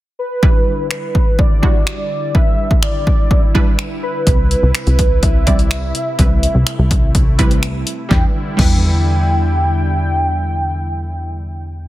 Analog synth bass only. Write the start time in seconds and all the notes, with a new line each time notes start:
4.27 C2
4.63 C2
4.87 C2
6.19 C2
6.55 C2
6.79 C2
8.11 E2
8.59 E2